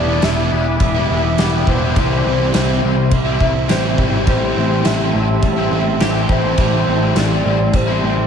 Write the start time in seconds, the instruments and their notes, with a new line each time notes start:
Already playing: picked electric bass E1, overdriven electric guitar E3 G3, clean electric guitar B3 D4 G4, ambient pad G4 E5 B5 D6, soft synth lead D5
0.06 overdriven electric guitar G3 B3 E4
0.21 picked electric bass E1, overdriven electric guitar E3 G3 B3 E4, clean electric guitar B3, soft synth lead E5, snare, crash
0.36 overdriven electric guitar G3 B3 E4
0.51 picked electric bass E1, overdriven electric guitar E3 G3 B3 E4, clean electric guitar B3, muted overdriven electric guitar stroke
0.67 muted overdriven electric guitar stroke
0.80 picked electric bass E1, clean electric guitar B3, soft synth lead E5, kick, crash
0.94 overdriven electric guitar G3 B3 E4
1.09 picked electric bass E1, overdriven electric guitar E3 G3 B3 E4, clean electric guitar B3
1.24 muted overdriven electric guitar stroke
1.38 picked electric bass E1, overdriven electric guitar E3 G3 B3 E4, clean electric guitar G4, snare, crash
1.53 overdriven electric guitar G3 B3 E4
1.67 picked electric bass E1, overdriven electric guitar E3 G3 B3 E4, clean electric guitar D4, soft synth lead C5, kick
1.82 overdriven electric guitar G3 B3 E4
1.96 picked electric bass C2, overdriven electric guitar C3 E3 G3 C4, clean electric guitar G3, ambient pad C6, kick, crash
2.00 overdriven electric guitar E4
2.09 overdriven electric guitar G3 C4 E4
2.25 picked electric bass C2, overdriven electric guitar E3 G3 C4 E4
2.39 overdriven electric guitar G3 C4 E4
2.53 picked electric bass C2, overdriven electric guitar C3 E3 G3 C4 E4, clean electric guitar G3, soft synth lead C5, snare, crash
2.66 overdriven electric guitar G3 C4 E4
2.81 picked electric bass C2, overdriven electric guitar E3 G3 C4 E4, muted overdriven electric guitar stroke
2.97 muted overdriven electric guitar stroke
3.11 picked electric bass C2, clean electric guitar G3, soft synth lead E5, kick, crash
3.25 overdriven electric guitar G3 C4 E4
3.39 picked electric bass C2, overdriven electric guitar E3 G3 C4 E4, kick
3.54 muted overdriven electric guitar stroke
3.68 picked electric bass A1, overdriven electric guitar C3 E3 G3 C4 E4, clean electric guitar G4, soft synth lead C5, snare, crash
3.83 overdriven electric guitar G3 C4 E4
3.98 picked electric bass G#1, overdriven electric guitar E3 G3 C4 E4, clean electric guitar E4, kick
4.11 overdriven electric guitar G3 C4 E4
4.26 picked electric bass A1, overdriven electric guitar A2 E3 A3 C4 E4, clean electric guitar G3, soft synth lead C5, ambient pad A5, kick, crash
4.40 overdriven electric guitar A3 C4 E4
4.55 picked electric bass A1, overdriven electric guitar E3 A3 C4 E4, clean electric guitar C4
4.68 overdriven electric guitar A3 C4 E4
4.83 picked electric bass A1, overdriven electric guitar A2 E3 A3 C4 E4, clean electric guitar G3, soft synth lead E5, snare, crash
4.98 overdriven electric guitar A3 C4 E4
5.12 picked electric bass A1, overdriven electric guitar E3 A3 C4 E4, clean electric guitar C4, muted overdriven electric guitar stroke
5.29 muted overdriven electric guitar stroke
5.42 picked electric bass A1, clean electric guitar G3, soft synth lead E5, kick, crash
5.56 overdriven electric guitar A3 C4 E4
5.70 picked electric bass A1, overdriven electric guitar E3 A3 C4 E4, clean electric guitar C4
5.86 muted overdriven electric guitar stroke
5.99 picked electric bass A1, overdriven electric guitar A2 E3 A3 C4 E4, clean electric guitar G4, snare, crash
6.14 overdriven electric guitar A3 C4 E4
6.29 picked electric bass A1, overdriven electric guitar E3 A3 C4 E4, clean electric guitar E4, soft synth lead C5, kick
6.44 overdriven electric guitar A3 C4 E4
6.58 picked electric bass A1, overdriven electric guitar A2 E3 A3 C4 E4, clean electric guitar G3, kick, crash
6.72 overdriven electric guitar A3 C4 E4
6.87 picked electric bass A1, overdriven electric guitar E3 A3 C4, clean electric guitar C4
6.91 overdriven electric guitar E4
7.01 overdriven electric guitar A3 C4 E4
7.15 picked electric bass A1, overdriven electric guitar A2 E3 A3 C4, clean electric guitar G3, soft synth lead D5, snare, crash
7.20 overdriven electric guitar E4
7.29 overdriven electric guitar A3 C4 E4
7.44 picked electric bass A1, overdriven electric guitar E3 A3 C4 E4, clean electric guitar C4, muted overdriven electric guitar stroke
7.59 muted overdriven electric guitar stroke
7.73 picked electric bass A1, clean electric guitar G3, soft synth lead C5, kick, crash
7.88 overdriven electric guitar A3 C4 E4
8.03 picked electric bass A1, overdriven electric guitar E3 A3 C4 E4, clean electric guitar C4
8.16 muted overdriven electric guitar stroke